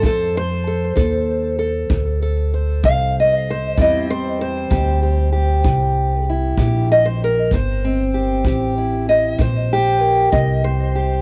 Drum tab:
BD |o--o--o--o--|o--o--o--o--|o--o--o--o--|